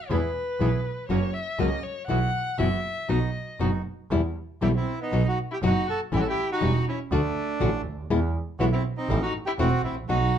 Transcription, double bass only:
0.10 0.31 E2 medium
0.60 0.80 B1 medium
1.09 1.30 F#1 medium
1.59 1.80 C#2 medium
2.09 2.30 B1 medium
2.58 2.80 F#1 medium
3.09 3.30 B1 medium
3.60 3.82 F#1 medium
4.11 4.32 E2 loud
4.61 4.83 B1 loud
5.12 5.33 B1 medium
5.62 5.83 F#1 loud
6.12 6.33 A1 loud
6.62 6.83 E1 loud
7.11 7.32 D2 loud
7.61 7.81 A1 loud
7.85 8.09 D2 medium
8.10 8.30 E2 loud
8.59 8.80 B1 loud
9.09 9.29 A1 loud
9.59 9.79 E1 loud
9.83 10.07 A1 medium
10.08 10.29 B1 loud

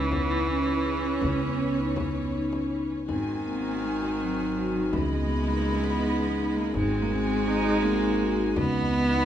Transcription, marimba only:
0.12 0.24 E4 medium
0.30 0.42 E4 medium
0.48 0.61 C#4 medium
0.67 0.79 E4 medium
0.85 0.98 G#4 medium
1.04 1.16 E4 medium
1.23 1.35 C#4 medium
1.41 1.53 B3 medium
1.59 1.71 B3 medium
1.77 1.90 D#4 medium
1.97 2.09 C#4 medium
2.15 2.27 B3 medium
2.33 2.46 D#4 medium
2.52 2.65 C#4 medium
2.72 2.97 D#4 medium
3.08 3.33 D#4 medium
3.46 3.58 C4 medium
3.64 3.77 C4 medium
3.83 3.95 D#4 medium
4.01 4.13 D#4 medium
4.20 4.32 C4 medium
4.38 4.50 D#4 medium
4.56 4.69 F#4 medium
4.74 4.86 D#4 medium
4.92 5.05 C#4 medium
5.11 5.23 B3 medium
5.28 5.41 B3 medium
5.47 5.59 D#4 medium
5.65 5.77 C#4 medium
5.83 5.96 B3 medium
6.01 6.14 D#4 medium
6.20 6.32 C#4 medium
6.38 6.63 D#4 medium
6.74 6.99 D#4 medium
7.11 7.23 C4 medium
7.28 7.41 C4 medium
7.47 7.59 D#4 medium
7.65 7.77 D#4 medium
7.83 7.95 C4 medium
8.01 8.14 D#4 medium
8.20 8.32 F#4 medium
8.38 8.51 D#4 medium
8.56 8.69 C#4 medium
8.75 8.87 B3 medium
8.93 9.06 B3 medium
9.11 9.24 D#4 medium

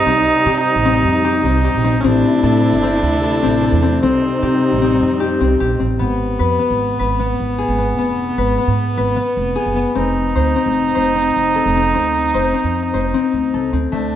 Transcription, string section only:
0.00 2.01 C3 medium
0.00 2.00 G3 medium
0.00 2.00 D#4 medium
2.04 5.96 C3 medium
2.04 4.00 A3 medium
2.04 4.00 E4 medium
4.03 5.98 G3 medium
4.03 5.98 D#4 medium

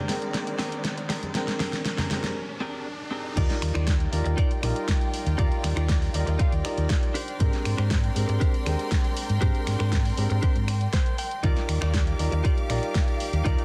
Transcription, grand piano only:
0.08 1.32 G#3 medium
0.08 1.32 C4 medium
0.08 1.32 D4 medium
0.08 1.33 A#4 medium
0.08 1.33 G5 medium
1.34 2.08 G#3 medium
1.34 2.08 C4 medium
1.34 2.08 D4 medium
1.34 2.08 A#4 medium
1.34 2.08 G5 medium
2.10 2.36 G#3 medium
2.10 2.36 C4 medium
2.10 2.36 D4 medium
2.10 2.37 G4 medium
2.10 2.37 A#4 medium
3.36 4.09 G3 medium
3.36 4.10 D#4 medium
3.36 4.10 F4 medium
3.36 4.10 A#4 medium
3.36 4.09 D5 medium
4.12 4.60 G3 medium
4.12 4.61 D#4 medium
4.12 4.61 F4 medium
4.12 4.61 A#4 medium
4.12 4.60 D5 medium
4.62 5.35 G3 medium
4.62 5.36 D#4 medium
4.62 5.36 F4 medium
4.62 5.36 A#4 medium
4.62 5.35 D5 medium
5.38 6.11 G3 medium
5.38 6.11 D#4 medium
5.38 6.12 F4 medium
5.38 6.12 A#4 medium
5.38 6.11 D5 medium
6.14 6.62 G3 medium
6.14 6.62 D#4 medium
6.14 6.62 F4 medium
6.14 6.63 A#4 medium
6.14 6.62 D5 medium
6.64 7.13 G3 medium
6.64 7.14 D#4 medium
6.64 7.14 F4 medium
6.64 7.14 A#4 medium
6.64 7.14 D5 medium
7.39 8.12 G#3 medium
7.39 8.13 C4 medium
7.39 8.13 D4 medium
7.39 8.13 G4 medium
7.39 8.14 A#4 medium
8.15 8.64 G#3 medium
8.15 8.64 C4 medium
8.15 8.64 D4 medium
8.15 8.64 G4 medium
8.15 8.64 A#4 medium
8.65 9.38 G#3 medium
8.65 9.39 C4 medium
8.65 9.39 D4 medium
8.65 9.39 G4 medium
8.65 9.39 A#4 medium
9.41 10.14 G#3 medium
9.41 10.14 C4 medium
9.41 10.15 D4 medium
9.41 10.15 G4 medium
9.41 10.15 A#4 medium
10.17 10.65 G#3 medium
10.17 10.66 C4 medium
10.17 10.66 D4 medium
10.17 10.66 G4 medium
10.17 10.66 A#4 medium
11.43 12.16 G3 medium
11.43 12.16 D#4 medium
11.43 12.17 F4 medium
11.43 12.17 A#4 medium
11.43 12.16 D5 medium
12.19 12.67 G3 medium
12.19 12.67 D#4 medium
12.19 12.67 F4 medium
12.19 12.68 A#4 medium
12.19 12.67 D5 medium
12.69 13.42 G3 medium
12.69 13.43 D#4 medium
12.69 13.43 F4 medium
12.69 13.43 A#4 medium
12.69 13.42 D5 medium
13.45 13.65 G3 medium
13.45 13.65 D#4 medium
13.45 13.65 F4 medium
13.45 13.65 A#4 medium
13.45 13.65 D5 medium

